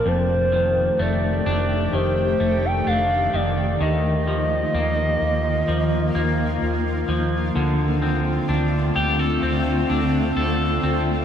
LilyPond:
<<
  \new Staff \with { instrumentName = "Soft synth lead" } { \time 4/4 \key f \mixolydian \tempo 4 = 64 c''4 d''4 c''8. g''16 f''8 d''8 | ees''2.~ ees''8 r8 | r1 | }
  \new Staff \with { instrumentName = "Clean electric guitar" } { \time 4/4 \key f \mixolydian f,8 ees8 a8 d'8 ees8 a8 d'8 ees8 | ees8 f8 bes4 f8 bes4 f8 | d8 c'8 d'8 g'16 a'16 c'8 d'8 a'8 c'8 | }
  \new Staff \with { instrumentName = "Ambient pad" } { \time 4/4 \key f \mixolydian << { g'1 | f'1~ | f'1 | } \\ { <ees a>1 | <ees bes>1 | <d a c'>1 | } >> }
  \new Staff \with { instrumentName = "Fingered electric bass" } { \clef bass \time 4/4 \key f \mixolydian f,,4 f,,8 f,,8 f,,8 f,,8 f,,8 f,,8 | ees,4 ees,8 ees,8 ees,8 ees,8 ees,8 ees,8 | d,4 d,8 d,8 d,8 d,8 d,8 d,8 | }
>>